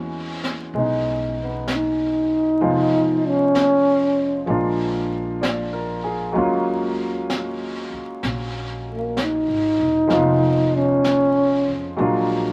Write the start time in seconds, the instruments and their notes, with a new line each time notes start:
Already playing: upright bass E2, upright piano E3 G#3 B3 C#4 F#4
0.44 snare
0.74 upright bass B1, upright piano G#3 B3, brush sweep
0.78 upright piano D#4
1.42 trombone B3
1.68 brush sweep, snare, hi-hat pedal
1.75 trombone D#4
2.61 upright bass F1, upright piano F3 G#3 B3 D#4 F4, brush sweep
3.28 trombone C#4
3.55 brush sweep, snare, hi-hat pedal
4.46 upright bass A#1, upright piano F3 G#3 A#3 D4, brush sweep
4.51 upright piano F4
5.41 upright piano D5, brush sweep, snare, hi-hat pedal
5.73 upright piano A#4
6.04 upright piano G#4
6.32 upright bass D#2, upright piano F#3 G#3 A#3
6.36 upright piano C#4 F4, brush sweep
7.30 brush sweep, snare, hi-hat pedal
7.93 muted upright bass stroke
8.23 upright bass A#1, brush sweep, snare
8.91 trombone A#3
9.17 brush sweep, snare, hi-hat pedal
9.22 trombone D#4
9.48 upright bass G#1
9.79 upright bass E1
10.07 upright bass F1, upright piano F3 G#3 B3 D#4, brush sweep, snare
10.13 upright piano F4
10.77 trombone C#4
11.04 brush sweep, snare, hi-hat pedal
11.68 upright bass F2
11.96 upright bass A#1, upright piano F#3 G#3 A#3 D4, brush sweep
12.02 upright piano F4